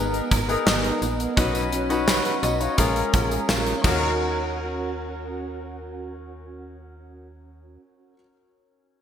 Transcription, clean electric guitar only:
0, 0, Header, 1, 2, 480
1, 0, Start_track
1, 0, Key_signature, -6, "minor"
1, 0, Tempo, 705882
1, 932, Time_signature, 4, 2, 24, 8
1, 6132, End_track
2, 0, Start_track
2, 0, Title_t, "Clean electric guitar"
2, 0, Program_c, 0, 27
2, 0, Note_on_c, 0, 56, 81
2, 0, Note_on_c, 0, 59, 67
2, 0, Note_on_c, 0, 63, 59
2, 0, Note_on_c, 0, 70, 68
2, 206, Note_off_c, 0, 70, 0
2, 214, Note_on_c, 0, 70, 69
2, 449, Note_off_c, 0, 63, 0
2, 451, Note_on_c, 0, 63, 61
2, 684, Note_off_c, 0, 59, 0
2, 692, Note_on_c, 0, 59, 57
2, 928, Note_off_c, 0, 56, 0
2, 931, Note_on_c, 0, 54, 78
2, 980, Note_off_c, 0, 59, 0
2, 980, Note_off_c, 0, 63, 0
2, 981, Note_off_c, 0, 70, 0
2, 1171, Note_on_c, 0, 61, 60
2, 1411, Note_on_c, 0, 71, 66
2, 1651, Note_on_c, 0, 63, 54
2, 1888, Note_off_c, 0, 54, 0
2, 1891, Note_on_c, 0, 56, 81
2, 1940, Note_off_c, 0, 63, 0
2, 1940, Note_off_c, 0, 71, 0
2, 2130, Note_on_c, 0, 70, 62
2, 2370, Note_on_c, 0, 65, 59
2, 2563, Note_off_c, 0, 61, 0
2, 2566, Note_on_c, 0, 61, 64
2, 2611, Note_off_c, 0, 56, 0
2, 2611, Note_off_c, 0, 65, 0
2, 2649, Note_on_c, 0, 66, 77
2, 2713, Note_off_c, 0, 70, 0
2, 2715, Note_on_c, 0, 70, 79
2, 5529, Note_off_c, 0, 61, 0
2, 5612, Note_off_c, 0, 66, 0
2, 5678, Note_off_c, 0, 70, 0
2, 6132, End_track
0, 0, End_of_file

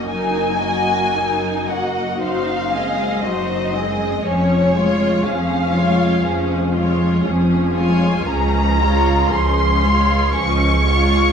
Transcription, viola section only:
0, 0, Header, 1, 2, 480
1, 0, Start_track
1, 0, Tempo, 1069519
1, 35, Time_signature, 4, 2, 24, 8
1, 991, Tempo, 1011804
1, 3871, Tempo, 1039861
1, 5276, End_track
2, 0, Start_track
2, 0, Title_t, "Viola section"
2, 0, Program_c, 0, 48
2, 28, Note_on_c, 0, 63, 45
2, 29, Note_on_c, 0, 54, 44
2, 264, Note_off_c, 0, 63, 0
2, 265, Note_off_c, 0, 54, 0
2, 287, Note_on_c, 0, 58, 39
2, 288, Note_on_c, 0, 66, 38
2, 521, Note_on_c, 0, 63, 42
2, 522, Note_on_c, 0, 54, 42
2, 523, Note_off_c, 0, 58, 0
2, 523, Note_off_c, 0, 66, 0
2, 757, Note_off_c, 0, 63, 0
2, 757, Note_on_c, 0, 58, 39
2, 757, Note_on_c, 0, 66, 41
2, 758, Note_off_c, 0, 54, 0
2, 988, Note_on_c, 0, 63, 43
2, 989, Note_on_c, 0, 54, 40
2, 991, Note_off_c, 0, 58, 0
2, 991, Note_off_c, 0, 66, 0
2, 1217, Note_off_c, 0, 54, 0
2, 1217, Note_off_c, 0, 63, 0
2, 1237, Note_on_c, 0, 60, 39
2, 1238, Note_on_c, 0, 56, 40
2, 1478, Note_off_c, 0, 56, 0
2, 1478, Note_off_c, 0, 60, 0
2, 1479, Note_on_c, 0, 63, 44
2, 1480, Note_on_c, 0, 54, 43
2, 1716, Note_on_c, 0, 60, 40
2, 1717, Note_off_c, 0, 63, 0
2, 1718, Note_off_c, 0, 54, 0
2, 1718, Note_on_c, 0, 56, 41
2, 1956, Note_off_c, 0, 60, 0
2, 1957, Note_off_c, 0, 56, 0
2, 1958, Note_on_c, 0, 53, 46
2, 1959, Note_on_c, 0, 61, 50
2, 2180, Note_off_c, 0, 53, 0
2, 2181, Note_off_c, 0, 61, 0
2, 2197, Note_on_c, 0, 65, 45
2, 2198, Note_on_c, 0, 56, 41
2, 2434, Note_off_c, 0, 56, 0
2, 2434, Note_off_c, 0, 65, 0
2, 2437, Note_on_c, 0, 53, 45
2, 2438, Note_on_c, 0, 61, 45
2, 2670, Note_on_c, 0, 65, 46
2, 2671, Note_on_c, 0, 56, 44
2, 2673, Note_off_c, 0, 53, 0
2, 2673, Note_off_c, 0, 61, 0
2, 2911, Note_off_c, 0, 56, 0
2, 2911, Note_off_c, 0, 65, 0
2, 2911, Note_on_c, 0, 53, 46
2, 2911, Note_on_c, 0, 61, 47
2, 3134, Note_off_c, 0, 53, 0
2, 3135, Note_off_c, 0, 61, 0
2, 3152, Note_on_c, 0, 56, 42
2, 3152, Note_on_c, 0, 65, 42
2, 3387, Note_on_c, 0, 61, 48
2, 3390, Note_off_c, 0, 56, 0
2, 3390, Note_off_c, 0, 65, 0
2, 3390, Note_on_c, 0, 53, 48
2, 3624, Note_on_c, 0, 65, 46
2, 3626, Note_on_c, 0, 56, 45
2, 3629, Note_off_c, 0, 61, 0
2, 3630, Note_off_c, 0, 53, 0
2, 3869, Note_on_c, 0, 53, 52
2, 3870, Note_off_c, 0, 65, 0
2, 3871, Note_off_c, 0, 56, 0
2, 3871, Note_on_c, 0, 61, 50
2, 4090, Note_off_c, 0, 53, 0
2, 4091, Note_off_c, 0, 61, 0
2, 4105, Note_on_c, 0, 56, 45
2, 4106, Note_on_c, 0, 65, 46
2, 4342, Note_on_c, 0, 53, 50
2, 4342, Note_on_c, 0, 61, 49
2, 4343, Note_off_c, 0, 56, 0
2, 4344, Note_off_c, 0, 65, 0
2, 4581, Note_off_c, 0, 53, 0
2, 4581, Note_off_c, 0, 61, 0
2, 4582, Note_on_c, 0, 65, 49
2, 4583, Note_on_c, 0, 56, 49
2, 4822, Note_off_c, 0, 56, 0
2, 4822, Note_off_c, 0, 65, 0
2, 4822, Note_on_c, 0, 61, 50
2, 4824, Note_on_c, 0, 53, 52
2, 5049, Note_off_c, 0, 61, 0
2, 5050, Note_off_c, 0, 53, 0
2, 5067, Note_on_c, 0, 56, 47
2, 5069, Note_on_c, 0, 65, 46
2, 5276, Note_off_c, 0, 56, 0
2, 5276, Note_off_c, 0, 65, 0
2, 5276, End_track
0, 0, End_of_file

